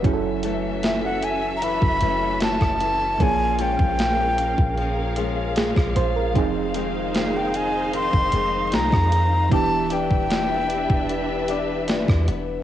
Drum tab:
HH |x-x-x-x-x-x-x-x-|x-x-x-x-x-x-x-x-|x-x-x-x-x-x-x-x-|x-x-x-x-x-x-x-x-|
SD |----o-------or--|----o-------or--|----o-------or--|----o-------or--|
BD |o--------o---o--|o--o---o-----o--|o--------o---o--|o--o---o-----o--|